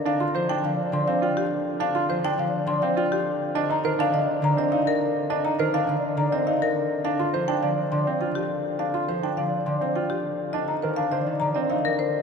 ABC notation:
X:1
M:3/4
L:1/16
Q:1/4=103
K:Cm
V:1 name="Marimba"
f c' c g f z c' f g G z2 | f c' c g f z c' f g G z2 | e b c f e z b e f B z2 | e b c f e z b e f B z2 |
f c' c g f z c' f g G z2 | f c' c g f z c' f g G z2 | e b c f e z b e f B c z |]
V:2 name="Grand piano"
D F c D z3 C F z3 | D F c D z3 C F z3 | D E B D z3 C E z3 | D E B D z3 C E z3 |
D F c D d z2 C F z3 | D F c D d z2 C F z3 | D E B D c z2 C E z3 |]
V:3 name="Harp" clef=bass
z2 F,2 D,2 D,6- | D,2 F,2 D,2 D,6 | z2 E,2 D,2 D,6- | D,2 E,2 D,2 D,6 |
z2 F,2 D,2 D,6- | D,2 F,2 D,2 D,6 | z2 E,2 D, E, D,6 |]